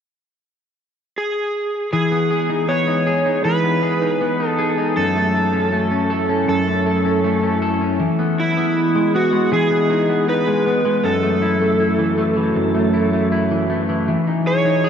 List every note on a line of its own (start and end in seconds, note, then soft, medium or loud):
1.18 1.92 G#4 medium
1.93 3.44 E3 medium
1.93 4.94 E3 medium
1.93 4.94 G#3 medium
1.93 4.94 B3 medium
1.93 4.94 D#4 medium
1.93 2.71 G#4 medium
1.93 4.94 G#4 medium
2.11 2.67 B3 soft
2.31 3.05 G#4 medium
2.49 2.86 D#4 soft
2.68 3.62 B3 soft
2.68 3.44 C#5 medium
2.87 3.25 D#4 soft
3.07 3.81 G#4 medium
3.26 4.00 D#4 soft
3.45 6.51 E3 medium
3.45 4.49 B4 medium
3.64 4.20 B3 soft
3.83 4.57 G#4 medium
4.02 4.39 D#4 soft
4.21 5.04 B3 soft
4.40 4.77 D#4 soft
4.49 4.96 A4 medium
4.59 5.04 G#4 medium
4.78 5.04 D#4 soft
4.95 6.47 F#2 medium
4.95 7.97 F#3 medium
4.95 7.97 A3 medium
4.95 7.97 C#4 medium
4.95 7.97 E4 medium
4.95 7.97 A4 medium
4.95 6.48 A4 medium
5.16 5.71 A3 soft
5.34 6.09 A4 medium
5.53 5.90 C#4 medium
5.72 6.66 A3 medium
5.91 6.28 C#4 medium
6.10 6.85 A4 medium
6.29 7.04 C#4 soft
6.48 8.08 F#2 medium
6.48 7.59 A4 medium
6.67 7.23 A3 soft
6.86 7.61 A4 medium
7.05 7.42 C#4 soft
7.24 8.08 A3 medium
7.43 7.80 C#4 soft
7.62 8.08 A4 medium
7.81 8.08 C#4 medium
8.00 9.51 E3 medium
8.00 11.01 E3 medium
8.00 11.01 G#3 medium
8.00 11.01 B3 medium
8.00 11.01 G#4 medium
8.00 11.01 D#5 medium
8.19 8.56 B3 medium
8.40 9.15 E4 medium
8.57 9.13 B3 medium
8.95 9.32 G#3 soft
9.14 9.70 B3 medium
9.14 9.53 F#4 medium
9.33 10.46 G#3 soft
9.52 11.99 E3 medium
9.52 10.29 G#4 medium
9.71 10.08 B3 medium
9.90 10.27 D#4 medium
10.09 10.65 B3 soft
10.28 11.12 D#4 medium
10.28 11.07 B4 medium
10.47 10.84 G#3 soft
10.66 11.12 B3 medium
10.85 11.12 G#3 medium
11.04 12.54 F#2 medium
11.04 14.05 C#3 medium
11.04 14.05 F#3 medium
11.04 14.05 A3 medium
11.04 14.05 E4 medium
11.04 14.05 F#4 medium
11.04 13.28 A4 medium
11.23 11.59 A3 medium
11.42 11.79 E4 medium
11.61 12.16 A3 medium
11.80 12.93 E4 medium
11.99 12.36 E3 medium
12.18 12.73 A3 medium
12.37 13.50 E3 soft
12.56 14.15 F#2 medium
12.75 13.12 A3 medium
12.94 13.32 E4 medium
13.13 13.69 A3 medium
13.32 14.27 E4 medium
13.51 13.89 E3 medium
13.70 14.15 A3 soft
13.89 14.08 E3 medium
14.08 14.89 B2 medium
14.08 14.89 E3 medium
14.08 14.89 G#3 medium
14.08 14.89 D#4 medium
14.08 14.89 G#4 medium
14.27 14.64 D#4 medium
14.46 14.83 G#4 medium
14.46 14.89 C#5 medium
14.65 14.89 D#4 medium
14.84 14.89 G#4 medium